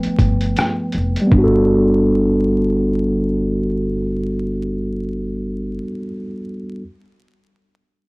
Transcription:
Already playing: F3 A3 B3 B4 G5
0.03 muted upright bass stroke, closed hi-hat
0.19 G1, kick, closed hi-hat
0.41 closed hi-hat
0.57 cross-stick, closed hi-hat
0.92 F1, closed hi-hat
1.16 closed hi-hat
1.21 G3
1.27 B3
1.32 G1 D4, kick
1.38 F#4
1.44 A4

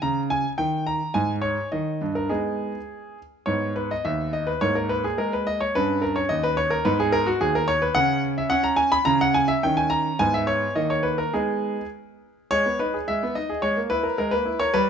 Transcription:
0.02 C#3 A#5
0.30 G#5
0.58 D#3 G5
0.87 A#5
1.14 G#2 G#5
1.42 C#5
1.72 D#3 D#5
2.01 G2
2.15 A#4
2.29 G#3 B3 D#4 G#4
3.46 G#2 B3 C#5
3.76 B4
3.91 D#5
4.05 D#2 E5
4.33 D#5
4.47 B4
4.61 G#2 A#3 C#5
4.75 A#4
4.89 B4
5.04 G#4
5.18 G#3 A#4
5.33 B4
5.47 D#5
5.61 C#5
5.75 G2 C#4 B4
6.02 A#4
6.16 C#5
6.29 D#2 D#5
6.43 B4
6.57 C#5
6.70 A#4
6.85 G#2 B3 B4
7.00 G#4
7.12 A#4
7.26 F#4
7.41 D#2 G#4
7.55 A#4
7.68 C#5
7.82 B4
7.95 C#3 C#4 F#5
8.38 E5
8.50 C#4 F#5
8.64 A#5
8.77 G#5
8.92 B5
9.05 C#3 C#4 A#5
9.21 F#5
9.34 G#5
9.48 E5
9.63 D#3 C#4 G5
9.77 G#5
9.90 A#5
10.19 G#2 B3 G#5
10.34 E5
10.47 C#5
10.76 D#3 A#3 D#5
10.90 C#5
11.03 B4
11.18 A#4
11.33 G#3 B3 D#4 G#4
12.51 G#3 C#5
12.66 B3
12.79 D#4 B4
12.94 G#4
13.08 G#3 E5
13.23 B3
13.35 D#4 D#5
13.49 G#4
13.62 G#3 C#5
13.77 A#3
13.90 E4 B4
14.03 A#4
14.18 G#3 A#4
14.31 A#3 B4
14.45 E4
14.60 A#4 C#5
14.74 G3 B4

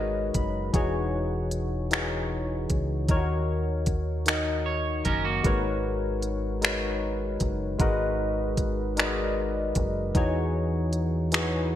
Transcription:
Already playing: G#1 G#3 D#4 F#4 A#4 B4 C#5 D#5
0.34 F#1 B5, kick, closed hi-hat
0.73 E1 E3 D#4 F#4 G#4 C#5, kick, closed hi-hat
1.51 closed hi-hat
1.90 E3 D#4 F#4 G#4 C#5, finger snap, closed hi-hat
2.70 C#2, kick, closed hi-hat
3.08 D#2 D#3 D#4 E4 A#4 C#5, kick, closed hi-hat
3.17 F#4
3.86 kick, closed hi-hat
4.26 D#3 D#4 F#4 A#4 D#5, finger snap, closed hi-hat
4.66 C#5
5.05 F#1 C#4 A#4, kick, closed hi-hat
5.25 A#3 F#4
5.43 G#1 G#3 D#4 F#4 A#4 B4 C#5, kick, closed hi-hat
6.22 closed hi-hat
6.61 G#3 D#4 F#4 A#4 B4 C#5, finger snap, closed hi-hat
7.40 F#1, kick, closed hi-hat
7.79 G#1 G#3 D#4 F#4 A#4 B4 D#5, kick, closed hi-hat
8.57 kick, closed hi-hat
8.97 G#3 D#4 F#4 A#4 B4 D5, finger snap, closed hi-hat
9.06 D#5
9.75 F#1, kick, closed hi-hat
10.15 E2 E3 D#4 F#4 G#4 C#5, kick, closed hi-hat
10.93 closed hi-hat
11.32 E3 D#4 F#4 G#4 B4, finger snap, closed hi-hat
11.42 C#5

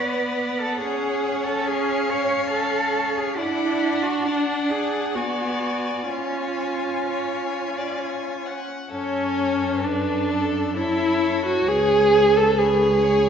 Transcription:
Already playing: B3 B4 D5 F#5
0.60 A4
0.81 C#4 G#4 C#5
1.47 A4
1.67 G#4 F5
2.10 C#5
2.51 A4
3.17 G#4
3.38 D4 E4 D5 F#5
4.03 F#4
4.25 D4 D5 F#5
4.70 G#4
5.15 B3 F#4 D5 G#5
6.09 C#4 F4 C#5 G#5
7.06 C#5
7.78 D5
7.99 C#5
8.47 F#5
8.91 F#2 C#4 A4 C#5
9.84 D4 A4 B4
10.30 A4
10.76 E4 A4 C#5
11.46 F#4
11.68 C#2 G#4 B4
12.37 A4
12.58 G#4 B4 C#5
13.04 C#5

